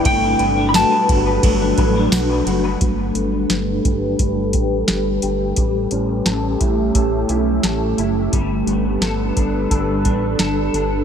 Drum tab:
RD |xxxxxxxx|--------|--------|--------|
HH |--------|xxxxxxxx|xxxxxxxx|xxxxxxxx|
TB |--x---x-|--------|--------|--------|
SD |--o---o-|--o---o-|--o---o-|--o---o-|
BD |o--ooo--|o--ooo--|o--oo---|o--ooo--|